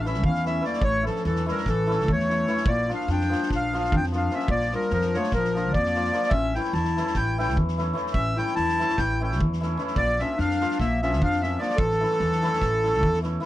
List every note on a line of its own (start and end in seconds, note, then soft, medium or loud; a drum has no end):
0.00 0.25 A1 medium
0.00 0.06 D4 medium
0.05 0.44 E3 medium
0.05 0.20 A3 medium
0.05 0.20 C#4 medium
0.05 0.25 C#4 medium
0.05 0.21 E4 medium
0.05 0.24 E5 medium
0.05 snare soft
0.14 snare soft
0.24 0.59 E2 loud
0.24 0.45 C#4 medium
0.24 0.45 F5 medium
0.24 kick medium
0.35 snare soft
0.45 0.60 E3 soft
0.45 0.60 A3 soft
0.45 0.60 C#4 medium
0.45 0.64 C#4 medium
0.45 0.60 E4 soft
0.45 0.65 E5 medium
0.45 snare soft
0.61 1.02 E3 medium
0.61 0.77 A3 medium
0.61 0.77 C#4 medium
0.61 0.77 E4 medium
0.61 snare soft
0.65 0.82 A#3 medium
0.65 0.83 D5 medium
0.73 snare soft
0.81 1.08 A1 medium
0.81 1.05 A3 medium
0.81 1.05 C#5 loud
0.81 kick medium
1.03 1.45 E3 soft
1.03 1.24 F3 medium
1.03 1.18 A3 medium
1.03 1.19 C#4 medium
1.03 1.19 E4 medium
1.03 1.23 A4 medium
1.03 snare soft
1.16 snare soft
1.25 1.50 E2 medium
1.25 1.47 E3 medium
1.25 1.48 A4 medium
1.25 snare soft
1.36 snare soft
1.46 1.86 E3 medium
1.46 1.66 G3 medium
1.46 1.61 A3 medium
1.46 1.62 C#4 medium
1.46 1.62 E4 medium
1.46 snare soft
1.51 1.69 A#4 medium
1.57 snare soft
1.66 2.09 A1 medium
1.66 2.06 E3 medium
1.66 2.11 A4 medium
1.66 kick medium
1.66 snare soft
1.87 2.28 E3 medium
1.87 2.03 A3 medium
1.87 2.03 C#4 medium
1.87 2.04 E4 medium
1.87 snare soft
2.00 snare soft
2.08 2.43 E2 medium
2.08 2.62 A3 medium
2.08 2.69 C#5 medium
2.08 kick medium
2.19 snare soft
2.29 2.46 E3 soft
2.29 2.43 A3 medium
2.29 2.43 C#4 medium
2.29 2.44 E4 medium
2.29 snare soft
2.47 2.71 E3 medium
2.47 2.62 A3 medium
2.47 2.62 C#4 medium
2.47 2.63 E4 medium
2.47 snare soft
2.57 snare soft
2.66 2.91 A#1 medium
2.66 2.89 A#3 medium
2.66 2.91 D5 loud
2.66 kick loud
2.88 3.28 F3 medium
2.88 3.03 A#3 medium
2.88 3.04 D4 medium
2.88 3.04 F4 medium
2.88 snare soft
2.93 3.08 D4 medium
2.93 3.10 F5 medium
3.00 snare soft
3.08 3.33 F2 medium
3.08 3.48 D4 medium
3.08 snare soft
3.12 3.49 G5 medium
3.21 snare soft
3.29 3.72 F3 medium
3.29 3.45 A#3 medium
3.29 3.46 D4 medium
3.29 3.46 F4 medium
3.29 snare soft
3.43 snare soft
3.50 3.94 A#1 medium
3.50 3.73 D4 medium
3.50 kick medium
3.50 snare soft
3.56 3.77 F5 loud
3.73 4.11 F3 medium
3.73 3.88 A#3 medium
3.73 3.88 D4 medium
3.73 3.92 D4 medium
3.73 3.88 F4 medium
3.73 snare soft
3.79 3.95 F5 medium
3.84 snare soft
3.92 4.27 F2 loud
3.92 4.03 D4 medium
3.92 kick medium
3.97 4.05 G5 loud
4.03 snare soft
4.12 4.29 F3 medium
4.12 4.27 A#3 medium
4.12 4.27 D4 soft
4.12 4.31 D4 medium
4.12 4.28 F4 medium
4.12 snare soft
4.17 4.34 F5 medium
4.30 4.71 F3 medium
4.30 4.45 A#3 medium
4.30 4.49 C#4 medium
4.30 4.45 D4 medium
4.30 4.46 F4 medium
4.30 snare soft
4.35 4.50 E5 medium
4.39 snare soft
4.48 4.74 A#1 medium
4.48 4.71 A#3 medium
4.48 4.74 D5 loud
4.48 kick medium
4.61 snare soft
4.71 5.14 F3 medium
4.71 4.90 G3 medium
4.71 4.87 A#3 medium
4.71 4.87 D4 soft
4.71 4.88 F4 medium
4.71 snare soft
4.75 4.92 A#4 medium
4.81 snare soft
4.90 5.17 F2 medium
4.90 5.14 F3 medium
4.90 5.17 A#4 medium
4.90 snare soft
5.01 snare soft
5.14 5.54 F3 medium
5.14 5.34 A3 medium
5.14 5.29 A#3 medium
5.14 5.30 D4 medium
5.14 5.30 F4 medium
5.14 5.32 C#5 medium
5.14 snare soft
5.23 snare soft
5.32 5.75 A#1 medium
5.32 5.73 A#4 medium
5.32 kick medium
5.32 snare soft
5.36 5.74 F3 medium
5.44 snare soft
5.55 5.94 F3 medium
5.55 5.70 A#3 medium
5.55 5.71 D4 medium
5.55 5.71 F4 medium
5.55 snare soft
5.73 6.09 F2 medium
5.73 6.28 A#3 medium
5.73 6.33 D5 loud
5.73 kick medium
5.85 snare soft
5.95 6.11 F3 medium
5.95 6.10 A#3 soft
5.95 6.10 D4 soft
5.95 6.10 F4 medium
5.95 snare soft
6.04 snare soft
6.12 6.37 F3 medium
6.12 6.27 A#3 medium
6.12 6.28 D4 soft
6.12 6.28 F4 medium
6.12 snare soft
6.23 snare soft
6.30 6.57 A1 medium
6.30 6.54 C#4 medium
6.30 6.55 E5 loud
6.30 kick medium
6.54 6.96 E3 medium
6.54 6.70 A3 soft
6.54 6.70 C#4 medium
6.54 6.73 E4 medium
6.54 6.71 E4 medium
6.54 6.73 G5 medium
6.54 snare soft
6.64 snare soft
6.73 6.99 E2 loud
6.73 7.14 E4 loud
6.73 7.17 A5 medium
6.73 snare soft
6.85 snare soft
6.97 7.37 E3 medium
6.97 7.12 A3 soft
6.97 7.12 C#4 medium
6.97 7.12 E4 medium
6.97 snare soft
7.07 snare soft
7.14 7.57 A1 medium
7.14 7.38 E4 medium
7.14 7.38 G5 loud
7.14 kick medium
7.14 snare soft
7.38 7.77 E3 medium
7.38 7.53 A3 medium
7.38 7.53 C#4 medium
7.38 7.53 E4 medium
7.38 7.57 E4 medium
7.38 7.57 G5 medium
7.38 snare soft
7.48 snare soft
7.57 7.91 E2 medium
7.57 kick medium
7.68 snare soft
7.78 7.92 E3 medium
7.78 7.92 A3 medium
7.78 7.92 C#4 medium
7.78 7.93 E4 medium
7.78 snare soft
7.93 8.35 E3 medium
7.93 8.09 A3 medium
7.93 8.09 C#4 medium
7.93 8.10 E4 medium
7.93 snare soft
8.07 snare soft
8.13 8.40 A1 medium
8.13 8.36 C#4 medium
8.13 8.38 E5 loud
8.13 kick medium
8.36 8.78 E3 medium
8.36 8.52 A3 medium
8.36 8.52 C#4 medium
8.36 8.55 E4 medium
8.36 8.52 E4 medium
8.36 8.55 G5 medium
8.36 snare soft
8.47 snare soft
8.56 8.82 E2 medium
8.56 8.95 E4 loud
8.56 8.99 A5 loud
8.56 snare soft
8.68 snare soft
8.79 9.19 E3 medium
8.79 8.94 A3 medium
8.79 8.94 C#4 medium
8.79 8.94 E4 medium
8.79 snare soft
8.89 snare soft
8.98 9.42 A1 medium
8.98 9.20 E4 medium
8.98 9.22 G5 loud
8.98 kick medium
8.98 snare soft
9.20 9.59 E3 medium
9.20 9.36 A3 medium
9.20 9.36 C#4 medium
9.20 9.39 E4 medium
9.20 9.36 E4 medium
9.20 9.40 G5 medium
9.32 snare soft
9.40 9.75 E2 loud
9.40 kick medium
9.53 snare soft
9.61 9.76 E3 medium
9.61 9.75 A3 soft
9.61 9.75 C#4 medium
9.61 9.76 E4 medium
9.61 snare soft
9.77 10.01 E3 medium
9.77 9.92 A3 medium
9.77 9.92 C#4 medium
9.77 9.93 E4 medium
9.77 snare soft
9.87 snare soft
9.96 10.22 A#1 medium
9.96 10.18 A#3 medium
9.96 10.21 D5 loud
9.96 kick medium
10.19 10.60 F3 medium
10.19 10.35 A#3 medium
10.19 10.37 C#4 medium
10.19 10.35 D4 medium
10.19 10.35 F4 medium
10.19 10.39 E5 medium
10.19 snare soft
10.37 10.64 F2 medium
10.37 10.77 D4 loud
10.37 10.78 F5 loud
10.37 snare soft
10.51 snare soft
10.61 11.02 F3 medium
10.61 10.76 A#3 medium
10.61 10.76 D4 medium
10.61 10.76 F4 medium
10.61 snare soft
10.71 snare soft
10.80 11.22 A#1 medium
10.80 11.02 A#3 loud
10.80 11.01 E5 medium
10.80 kick medium
10.80 snare soft
11.02 11.41 F3 medium
11.02 11.18 A#3 medium
11.02 11.20 C#4 medium
11.02 11.18 D4 medium
11.02 11.18 F4 medium
11.02 11.22 E5 medium
11.02 snare soft
11.13 snare soft
11.22 11.56 F2 loud
11.22 11.41 D4 medium
11.22 11.42 F5 loud
11.22 kick medium
11.33 snare soft
11.42 11.58 F3 soft
11.42 11.57 A#3 soft
11.42 11.59 C#4 medium
11.42 11.56 D4 medium
11.42 11.57 F4 soft
11.42 11.60 E5 medium
11.42 snare soft
11.59 11.83 F3 medium
11.59 11.74 A#3 medium
11.59 11.77 A#3 medium
11.59 11.74 D4 medium
11.59 11.74 F4 medium
11.59 11.78 D5 medium
11.59 snare soft
11.70 snare soft
11.76 12.03 A1 medium
11.76 13.20 E3 medium
11.76 13.19 A4 loud
11.76 kick loud
11.91 snare soft
12.00 12.41 E3 medium
12.00 12.15 A3 medium
12.00 12.15 C#4 soft
12.00 12.16 E4 medium
12.00 snare soft
12.11 snare soft
12.20 12.45 E2 medium
12.20 snare soft
12.32 snare soft
12.43 12.83 E3 medium
12.43 12.57 A3 medium
12.43 12.57 C#4 medium
12.43 12.58 E4 medium
12.43 snare soft
12.53 snare soft
12.61 13.03 A1 medium
12.61 kick medium
12.61 snare soft
12.84 13.21 E3 medium
12.84 12.98 A3 medium
12.84 12.99 C#4 medium
12.84 12.99 E4 medium
12.84 snare soft
12.94 snare soft
13.03 13.37 E2 medium
13.03 kick medium
13.13 snare soft
13.22 13.39 E3 soft
13.22 13.37 A3 medium
13.22 13.37 C#4 medium
13.22 13.38 E4 medium
13.22 snare soft
13.40 13.46 E3 medium
13.40 13.46 A3 medium
13.40 13.46 C#4 medium
13.40 13.46 E4 medium
13.40 snare soft